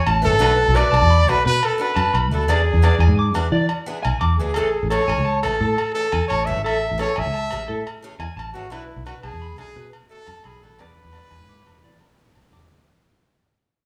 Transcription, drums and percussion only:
0.07 low agogo
0.42 low agogo
0.76 low agogo
0.94 low agogo
1.29 low agogo
1.63 low agogo
1.97 low agogo
2.15 low agogo
2.50 low agogo
2.84 low agogo
3.00 low agogo
3.35 low agogo
3.69 low agogo
4.05 low agogo
4.21 low agogo
4.54 low agogo
4.91 low agogo
5.09 low agogo
5.43 low agogo
5.78 low agogo
6.12 low agogo
6.30 low agogo
6.66 low agogo
6.99 low agogo
7.16 low agogo
7.51 low agogo
7.87 low agogo
8.20 low agogo
8.39 low agogo
8.72 low agogo
9.07 low agogo
9.23 low agogo
9.58 low agogo
9.93 low agogo
10.27 low agogo
10.44 low agogo
10.79 low agogo
11.13 low agogo
11.30 low agogo
11.67 low agogo
12.01 low agogo
12.35 low agogo
12.53 low agogo

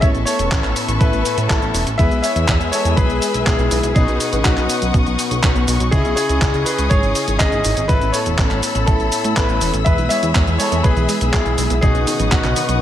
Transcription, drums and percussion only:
0.02 kick, closed hi-hat, cabasa
0.15 closed hi-hat, cabasa
0.27 open hi-hat, cabasa
0.39 closed hi-hat, cabasa
0.52 kick, clap, closed hi-hat, cabasa
0.64 clap, closed hi-hat, cabasa
0.76 open hi-hat, cabasa
0.89 closed hi-hat, cabasa
1.01 kick, closed hi-hat, cabasa
1.13 closed hi-hat, cabasa
1.25 open hi-hat, cabasa
1.38 closed hi-hat, cabasa
1.50 kick, clap, closed hi-hat, cabasa
1.62 closed hi-hat, cabasa
1.74 open hi-hat, cabasa
1.87 closed hi-hat, cabasa
1.99 kick, closed hi-hat, cabasa
2.11 closed hi-hat, cabasa
2.24 open hi-hat, cabasa
2.36 closed hi-hat, cabasa
2.48 kick, clap, closed hi-hat, cabasa
2.61 closed hi-hat, cabasa
2.73 open hi-hat, cabasa
2.85 closed hi-hat, cabasa
2.97 kick, closed hi-hat, cabasa
3.10 closed hi-hat, cabasa
3.22 open hi-hat, cabasa
3.34 closed hi-hat, cabasa
3.47 kick, clap, closed hi-hat, cabasa
3.59 closed hi-hat, cabasa
3.71 open hi-hat, cabasa
3.83 closed hi-hat, cabasa
3.96 kick, closed hi-hat, cabasa
4.08 closed hi-hat, cabasa
4.20 open hi-hat, cabasa
4.33 closed hi-hat, cabasa
4.45 kick, clap, closed hi-hat, cabasa
4.57 clap, closed hi-hat, cabasa
4.70 open hi-hat, cabasa
4.82 closed hi-hat, cabasa
4.94 kick, closed hi-hat, cabasa
5.06 closed hi-hat, cabasa
5.19 open hi-hat, cabasa
5.31 closed hi-hat, cabasa
5.43 kick, clap, closed hi-hat, cabasa
5.56 closed hi-hat, cabasa
5.68 open hi-hat, cabasa
5.80 closed hi-hat, cabasa
5.92 kick, closed hi-hat, cabasa
6.05 closed hi-hat, cabasa
6.17 open hi-hat, cabasa
6.29 closed hi-hat, cabasa
6.42 kick, clap, closed hi-hat, cabasa
6.54 closed hi-hat, cabasa
6.66 open hi-hat, cabasa
6.79 closed hi-hat, cabasa
6.91 kick, closed hi-hat, cabasa
7.03 closed hi-hat, cabasa
7.15 open hi-hat, cabasa
7.28 closed hi-hat, cabasa
7.40 kick, clap, closed hi-hat, cabasa
7.52 closed hi-hat, cabasa
7.65 open hi-hat, cabasa
7.77 closed hi-hat, cabasa
7.89 kick, closed hi-hat, cabasa
8.01 closed hi-hat, cabasa
8.14 open hi-hat, cabasa
8.26 closed hi-hat, cabasa
8.38 kick, clap, closed hi-hat, cabasa
8.51 clap, closed hi-hat, cabasa
8.63 open hi-hat, cabasa
8.75 closed hi-hat, cabasa
8.88 kick, closed hi-hat, cabasa
9.00 closed hi-hat, cabasa
9.12 open hi-hat, cabasa
9.24 closed hi-hat, cabasa
9.37 kick, clap, closed hi-hat, cabasa
9.49 closed hi-hat, cabasa
9.61 open hi-hat, cabasa
9.74 closed hi-hat, cabasa
9.86 kick, closed hi-hat, cabasa
9.98 closed hi-hat, cabasa
10.10 open hi-hat, cabasa
10.23 closed hi-hat, cabasa
10.35 kick, clap, closed hi-hat, cabasa
10.47 closed hi-hat, cabasa
10.60 open hi-hat, cabasa
10.72 closed hi-hat, cabasa
10.84 kick, closed hi-hat, cabasa
10.97 closed hi-hat, cabasa
11.09 open hi-hat, cabasa
11.21 closed hi-hat, cabasa
11.33 kick, clap, closed hi-hat, cabasa
11.46 closed hi-hat, cabasa
11.58 open hi-hat, cabasa
11.70 closed hi-hat, cabasa
11.83 kick, closed hi-hat, cabasa
11.95 closed hi-hat, cabasa
12.07 open hi-hat, cabasa
12.20 closed hi-hat, cabasa
12.32 kick, clap, closed hi-hat, cabasa
12.44 clap, closed hi-hat, cabasa
12.56 open hi-hat, cabasa
12.69 closed hi-hat, cabasa

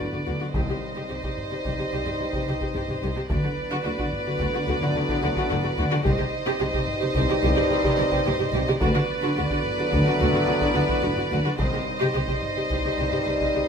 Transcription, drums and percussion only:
0.13 taiko low-mid
0.54 taiko
1.23 taiko
1.37 taiko low-mid
1.65 taiko
2.06 taiko low-mid
2.33 taiko
2.61 taiko
2.75 taiko low-mid
2.89 taiko low-mid
3.30 taiko
3.99 taiko
4.12 taiko low-mid
4.40 taiko
4.81 taiko low-mid
5.09 taiko
5.36 taiko
5.50 taiko low-mid
5.64 taiko low-mid
6.05 taiko
6.73 taiko
6.87 taiko low-mid
7.15 taiko
7.57 taiko low-mid
7.84 taiko
8.12 taiko
8.26 taiko low-mid
8.40 taiko low-mid
8.81 taiko
9.50 taiko
9.64 taiko low-mid
9.92 taiko
10.33 taiko low-mid
10.61 taiko
10.89 taiko
11.03 taiko low-mid
11.17 taiko low-mid
11.59 taiko
12.28 taiko
12.42 taiko low-mid
12.70 taiko
13.12 taiko low-mid
13.40 taiko

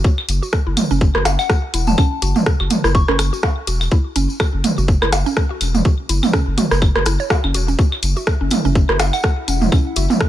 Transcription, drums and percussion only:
0.04 kick, tambourine
0.18 claves
0.29 closed hi-hat, tambourine
0.43 tambourine
0.53 kick, cross-stick, tambourine
0.77 closed hi-hat, mid tom, tambourine, claves
0.91 tambourine
1.01 kick, tambourine
1.15 cross-stick
1.25 cross-stick, closed hi-hat, tambourine, percussion blips
1.39 tambourine, claves
1.50 kick, cross-stick, tambourine
1.74 closed hi-hat, tambourine
1.87 mid tom, tambourine
1.98 kick, tambourine, claves
2.22 closed hi-hat, tambourine
2.36 mid tom, tambourine
2.46 kick, cross-stick, tambourine
2.60 claves
2.70 closed hi-hat, mid tom, tambourine
2.84 cross-stick, tambourine
2.95 kick, tambourine
3.08 cross-stick
3.19 cross-stick, closed hi-hat, tambourine, claves
3.33 tambourine
3.43 kick, cross-stick, percussion blips
3.67 closed hi-hat, tambourine
3.81 tambourine, claves
3.91 kick, tambourine
4.16 closed hi-hat, tambourine
4.30 tambourine
4.40 kick, cross-stick, tambourine, claves
4.64 closed hi-hat, mid tom, tambourine
4.78 tambourine
4.88 kick, tambourine
5.02 cross-stick, claves
5.12 cross-stick, closed hi-hat, tambourine, percussion blips
5.26 tambourine
5.37 kick, cross-stick, tambourine
5.61 closed hi-hat, tambourine, claves
5.75 mid tom, tambourine
5.85 kick, tambourine
6.09 closed hi-hat, tambourine
6.23 mid tom, tambourine, claves
6.33 kick, cross-stick
6.58 closed hi-hat, mid tom, tambourine
6.71 cross-stick, tambourine
6.82 kick, tambourine, claves
6.96 cross-stick
7.06 cross-stick, closed hi-hat, tambourine
7.20 tambourine
7.30 kick, cross-stick, tambourine, percussion blips
7.44 claves
7.54 closed hi-hat, tambourine
7.68 tambourine
7.79 kick, tambourine
7.92 claves
8.03 closed hi-hat, tambourine
8.17 tambourine
8.27 kick, cross-stick, tambourine
8.51 closed hi-hat, mid tom, tambourine, claves
8.65 tambourine
8.75 kick, tambourine
8.89 cross-stick
8.99 cross-stick, closed hi-hat, tambourine, percussion blips
9.13 tambourine, claves
9.23 kick, cross-stick, tambourine
9.48 closed hi-hat, tambourine
9.62 mid tom, tambourine
9.72 kick, tambourine, claves
9.96 closed hi-hat, tambourine
10.10 mid tom, tambourine
10.20 kick, cross-stick, tambourine

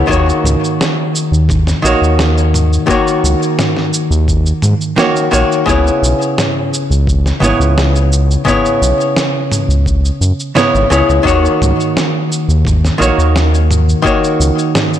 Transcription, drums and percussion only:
0.09 kick, cabasa
0.30 cabasa
0.45 mid tom, cabasa
0.64 cabasa
0.81 snare, cabasa
1.16 cabasa
1.34 cabasa
1.49 kick, mid tom, cabasa
1.67 snare, cabasa
1.85 cabasa
2.04 cabasa
2.19 snare, cabasa
2.38 cabasa
2.54 mid tom, cabasa
2.73 cabasa
2.88 kick, cabasa
3.08 cabasa
3.25 cabasa
3.43 cabasa
3.59 snare, mid tom, cabasa
3.77 snare
3.94 cabasa
4.12 cabasa
4.28 kick, cabasa
4.46 cabasa
4.62 mid tom, cabasa
4.81 cabasa
4.98 snare, cabasa
5.16 cabasa
5.34 cabasa
5.52 cabasa
5.68 kick, cabasa
5.87 cabasa
6.04 cabasa
6.22 cabasa
6.38 snare, mid tom, cabasa
6.74 cabasa
6.92 cabasa
7.07 kick, cabasa
7.26 snare, cabasa
7.43 mid tom, cabasa
7.61 cabasa
7.78 snare, cabasa
7.96 cabasa
8.13 cabasa
8.31 cabasa
8.47 kick, mid tom, cabasa
8.66 cabasa
8.83 cabasa
9.01 cabasa
9.16 snare, cabasa
9.52 mid tom, cabasa
9.71 cabasa
9.86 kick, cabasa
10.05 cabasa
10.22 cabasa
10.40 cabasa
10.57 snare, mid tom, cabasa
10.75 cabasa
10.92 cabasa
11.10 cabasa
11.25 kick, cabasa
11.45 cabasa
11.62 mid tom, cabasa
11.81 cabasa
11.97 snare, cabasa
12.32 cabasa
12.50 cabasa
12.65 kick, mid tom, cabasa
12.85 snare, cabasa
13.02 cabasa
13.20 cabasa
13.36 snare, cabasa
13.55 cabasa
13.71 mid tom, cabasa
13.89 cabasa
14.05 kick, cabasa
14.24 cabasa
14.41 cabasa
14.59 cabasa
14.75 snare, mid tom, cabasa
14.94 cabasa

